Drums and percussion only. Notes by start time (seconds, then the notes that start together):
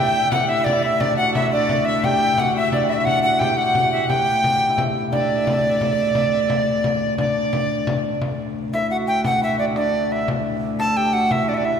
0.15 frame drum
0.32 frame drum
0.66 frame drum
1.01 frame drum
1.18 frame drum
1.35 frame drum
1.69 frame drum
2.04 frame drum
2.21 frame drum
2.38 frame drum
2.72 frame drum
3.07 frame drum
3.41 frame drum
3.58 frame drum
3.75 frame drum
3.92 frame drum
4.10 frame drum
4.27 frame drum
4.44 frame drum
4.78 frame drum
5.13 frame drum
5.30 frame drum
5.47 frame drum
5.81 frame drum
6.15 frame drum
6.32 frame drum
6.50 frame drum
6.84 frame drum
7.18 frame drum
7.53 frame drum
7.87 frame drum
8.04 frame drum
8.21 frame drum
8.56 frame drum
8.74 frame drum
8.91 frame drum
9.24 frame drum
9.59 frame drum
9.76 frame drum
9.94 frame drum
10.28 frame drum
10.62 frame drum
10.80 frame drum
10.97 frame drum
11.31 frame drum
11.48 frame drum